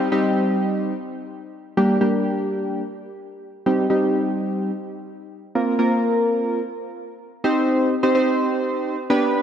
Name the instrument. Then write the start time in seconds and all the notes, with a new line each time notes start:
synth keys
0.12 G3 C4 D#4 G4
1.77 G3 A#3 D4 G4
2.01 G3 A#3 D4 G4
3.66 G3 C4 D#4 G4
3.90 G3 C4 D#4 G4
5.55 A#3 C4 F4 A#4
5.79 A#3 C4 F4 A#4
7.44 C4 D#4 G4 C5
8.03 C4 D#4 G4 C5
8.15 C4 D#4 G4 C5
9.10 B3 D4 G4 B4